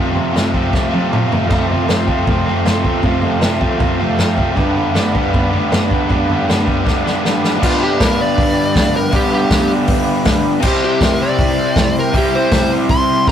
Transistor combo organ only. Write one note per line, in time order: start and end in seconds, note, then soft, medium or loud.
1.45 4.50 F4 medium
1.45 4.51 A4 medium
1.45 4.52 C5 medium
4.56 7.57 D4 medium
4.56 7.58 G4 medium
4.56 7.59 B4 medium
7.05 7.23 D5 medium
7.24 7.59 A5 medium
7.62 10.60 D4 medium
7.62 10.61 G4 medium
7.62 10.61 B4 medium
10.60 13.32 E4 medium
10.60 13.32 G4 medium
10.60 13.32 C5 medium